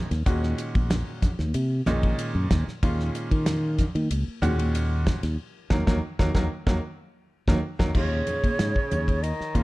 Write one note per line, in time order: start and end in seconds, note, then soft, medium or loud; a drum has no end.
0.11 0.24 D#2 medium
0.11 snare soft
0.11 ride medium
0.26 0.52 D#2 medium
0.26 1.27 A#2 medium
0.26 1.27 D#3 medium
0.26 1.27 G#3 medium
0.26 1.27 C#4 medium
0.26 1.28 F#4 medium
0.26 kick loud
0.26 hi-hat pedal medium
0.26 ride medium
0.43 snare soft
0.58 hi-hat pedal medium
0.58 ride medium
0.75 1.01 A#1 medium
0.75 kick medium
0.75 ride medium
0.75 high conga medium
0.90 snare loud
0.90 hi-hat pedal medium
0.90 ride medium
0.90 low conga medium
1.22 kick medium
1.22 snare soft
1.22 hi-hat pedal medium
1.22 ride medium
1.22 low conga medium
1.39 1.51 D#2 medium
1.39 snare soft
1.39 high conga medium
1.54 1.81 C3 loud
1.54 hi-hat pedal medium
1.54 ride medium
1.86 2.13 A#1 medium
1.86 2.63 A#2 medium
1.86 2.63 D#3 medium
1.86 2.63 G#3 medium
1.86 2.63 C#4 medium
1.86 2.63 D#4 medium
1.86 snare soft
1.86 hi-hat pedal medium
1.86 ride medium
1.86 high conga medium
1.86 low conga medium
2.03 kick medium
2.03 ride medium
2.19 hi-hat pedal medium
2.19 ride medium
2.35 2.47 F#2 medium
2.51 2.64 D#2 medium
2.51 kick medium
2.51 snare loud
2.51 hi-hat pedal medium
2.51 ride medium
2.51 low conga medium
2.68 muted fingered electric bass stroke soft
2.68 snare soft
2.83 3.09 D#2 medium
2.83 3.84 A#2 medium
2.83 3.84 D#3 medium
2.83 3.84 G#3 medium
2.83 3.84 C#4 medium
2.83 3.84 F4 medium
2.83 kick loud
2.83 hi-hat pedal medium
2.83 ride medium
3.00 snare soft
3.15 hi-hat pedal medium
3.15 ride medium
3.31 3.83 D#3 medium
3.31 kick medium
3.31 ride medium
3.46 snare loud
3.46 hi-hat pedal medium
3.46 ride medium
3.46 low conga medium
3.78 kick medium
3.78 snare soft
3.78 hi-hat pedal medium
3.78 ride medium
3.78 low conga medium
3.95 4.08 D#3 medium
3.95 ride soft
3.95 high conga medium
4.11 4.24 C#2 medium
4.11 hi-hat pedal medium
4.11 ride medium
4.28 muted fingered electric bass stroke soft
4.42 5.08 D#2 medium
4.42 5.18 A#2 medium
4.42 5.18 D#3 medium
4.42 5.19 G#3 medium
4.42 5.19 C#4 medium
4.42 5.19 F#4 medium
4.42 hi-hat pedal medium
4.42 ride medium
4.42 high conga medium
4.42 low conga medium
4.59 ride medium
4.75 hi-hat pedal medium
4.75 ride medium
5.07 kick medium
5.07 snare loud
5.07 hi-hat pedal medium
5.07 ride medium
5.07 low conga medium
5.23 5.36 D#2 medium
5.23 snare soft
5.23 ride medium
5.70 5.83 D#2 medium
5.70 5.81 D#3 medium
5.70 5.81 F#3 medium
5.70 5.81 A#3 medium
5.70 kick loud
5.70 snare medium
5.70 low conga medium
5.87 5.99 D#2 medium
5.87 5.97 D#3 medium
5.87 5.97 F#3 medium
5.87 5.97 A#3 medium
5.87 kick loud
5.87 snare loud
5.87 low conga medium
6.19 6.31 D#2 medium
6.19 6.29 D#3 medium
6.19 6.29 F#3 medium
6.19 6.29 A#3 medium
6.19 kick medium
6.19 snare medium
6.19 low conga medium
6.34 6.47 D#2 medium
6.34 6.46 D#3 medium
6.34 6.46 F#3 medium
6.34 6.46 A#3 medium
6.34 kick medium
6.34 snare medium
6.34 low conga medium
6.67 6.79 D#2 medium
6.67 6.78 D#3 medium
6.67 6.77 F#3 medium
6.67 6.78 A#3 medium
6.67 kick medium
6.67 snare medium
6.67 low conga medium
7.48 7.59 D#2 medium
7.48 7.58 D#3 medium
7.48 7.58 F#3 medium
7.48 7.58 A#3 medium
7.48 kick medium
7.48 snare medium
7.48 low conga medium
7.79 7.91 D#2 medium
7.79 7.89 D#3 medium
7.79 7.89 F#3 medium
7.79 7.89 A#3 medium
7.79 kick medium
7.79 snare medium
7.79 low conga medium
7.95 8.21 D#2 medium
7.95 8.96 A#2 medium
7.95 9.24 C#3 medium
7.95 8.96 D#3 soft
7.95 8.96 G#3 medium
7.95 8.96 C#4 soft
7.95 8.96 F4 medium
7.95 9.25 C#5 medium
7.95 kick loud
7.95 crash medium
7.95 low conga medium
8.27 hi-hat pedal medium
8.27 ride medium
8.27 low conga medium
8.44 kick medium
8.44 ride medium
8.44 high conga medium
8.59 8.73 G#2 medium
8.59 snare medium
8.59 hi-hat pedal medium
8.59 ride medium
8.76 kick medium
8.91 9.31 D#2 medium
8.91 hi-hat pedal medium
8.91 ride medium
8.91 low conga medium
9.08 kick medium
9.08 ride medium
9.22 9.63 D#3 medium
9.22 9.63 D#5 medium
9.22 hi-hat pedal medium
9.22 ride medium
9.41 muted fingered electric bass stroke soft
9.41 snare soft
9.55 9.63 D#2 medium
9.55 9.63 A#2 medium
9.55 9.63 D#3 medium
9.55 9.63 G#3 medium
9.55 9.63 C#4 medium
9.55 9.63 F4 medium
9.55 kick medium
9.55 hi-hat pedal medium
9.55 ride medium
9.55 high conga medium